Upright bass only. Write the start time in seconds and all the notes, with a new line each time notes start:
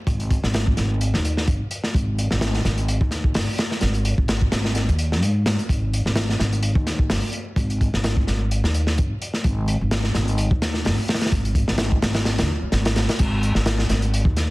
0.07 G#1
0.43 G#1
0.78 G#1
1.14 D#2
1.48 G#1
1.94 G#1
2.31 G#1
2.65 G#1
3.01 D#2
3.35 G#1
3.82 G#1
4.18 G#1
4.52 G#1
4.89 D#2
5.23 G#2
5.69 G#1
6.05 G#1
6.40 G#1
6.75 D#2
7.10 G#1
7.56 G#1
7.94 G#1
8.28 G#1
8.64 D#2
8.99 G#1
9.44 G#1
9.81 G#1
10.15 G#1
10.51 D#2
10.85 G#1
11.32 G#1
11.68 G#1
12.02 G#1
12.39 D#2
12.62 muted upright bass stroke
12.72 G#1
13.20 G#1
13.56 G#1
13.90 G#1
14.25 D#2